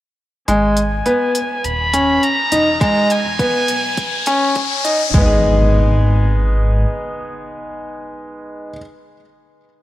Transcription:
0.48 1.01 G#1 medium
0.48 0.78 G#3 medium
0.48 1.66 G#5 medium
0.48 closed hi-hat soft
0.48 riser medium
0.77 closed hi-hat medium
1.06 1.36 B3 medium
1.06 closed hi-hat soft
1.35 closed hi-hat medium
1.64 2.18 D#1 medium
1.64 2.24 B5 loud
1.64 closed hi-hat soft
1.94 2.23 C#4 medium
1.94 closed hi-hat medium
2.23 2.81 A#5 loud
2.23 closed hi-hat soft
2.52 3.05 E1 medium
2.52 2.67 D#4 medium
2.52 closed hi-hat medium
2.81 3.11 G#3 medium
2.81 3.13 A#5 medium
2.81 kick loud
2.81 closed hi-hat soft
3.10 4.27 G#5 loud
3.10 closed hi-hat medium
3.24 3.63 E1 medium
3.39 3.69 B3 medium
3.39 kick loud
3.39 closed hi-hat soft
3.68 4.22 B1 medium
3.68 closed hi-hat medium
3.97 kick loud
3.97 closed hi-hat soft
4.26 5.09 G#1 loud
4.26 4.57 C#4 medium
4.26 closed hi-hat medium
4.55 kick loud
4.55 closed hi-hat soft
4.84 4.99 D#4 medium
4.84 closed hi-hat medium
5.14 6.85 G#1 loud
5.14 8.69 G#3 medium
5.14 8.73 B3 medium
5.14 kick loud
5.14 impact medium
5.22 8.77 D#4 medium
5.26 8.81 G#4 medium

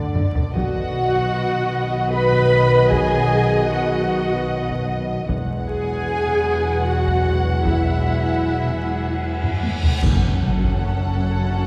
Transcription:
0.00 0.51 D2 soft
0.00 0.51 D3 soft
0.00 0.51 A4 medium
0.00 0.51 D5 soft
0.00 0.55 D5 soft
0.00 0.51 F#5 medium
0.15 taiko low-mid medium
0.35 taiko low medium
0.54 5.25 B1 medium
0.54 5.24 B2 medium
0.54 5.24 D#3 medium
0.54 5.24 F#3 medium
0.54 2.09 F#4 medium
0.54 5.27 B4 medium
0.54 5.24 D#5 medium
0.54 5.29 D#5 medium
0.54 2.09 F#5 medium
0.54 5.25 F#5 medium
0.54 taiko medium
2.12 2.91 B4 medium
2.12 2.92 B4 medium
2.12 2.92 B5 medium
2.33 taiko medium
2.91 3.71 G#4 medium
2.91 3.69 G#4 loud
2.91 3.69 G#5 medium
2.91 taiko medium
3.71 4.89 F#4 medium
3.71 4.87 F#5 medium
4.70 taiko medium
5.28 9.82 E1 medium
5.28 9.82 E2 medium
5.28 9.67 F#3 medium
5.28 9.67 G#3 medium
5.28 9.98 B4 medium
5.28 10.02 F#5 medium
5.28 9.79 F#5 medium
5.28 10.02 G#5 medium
5.28 taiko medium
5.68 6.82 G#4 medium
5.68 6.83 G#4 medium
5.68 6.83 G#5 medium
6.28 taiko mid soft
6.86 7.66 F#4 medium
6.86 7.65 F#5 medium
7.07 taiko medium
7.27 taiko mid soft
7.46 taiko mid soft
7.65 9.59 E4 medium
7.65 9.59 E4 soft
7.65 9.63 E5 soft
7.65 taiko medium
7.65 reverse cymbal soft
8.64 taiko mid soft
9.43 taiko low-mid medium
9.63 taiko high medium
9.83 taiko low medium
10.02 11.67 F#1 medium
10.02 11.67 F#2 medium
10.02 11.17 F#2 medium
10.02 11.67 C#4 medium
10.02 11.67 A4 medium
10.02 11.67 C#5 medium
10.02 11.67 F#5 medium
10.02 11.67 A5 medium
10.02 concert bass drum medium
10.02 taiko medium
10.02 crash medium
10.02 impact medium
10.23 taiko mid soft
10.43 taiko mid medium
10.63 taiko medium
11.41 taiko mid soft

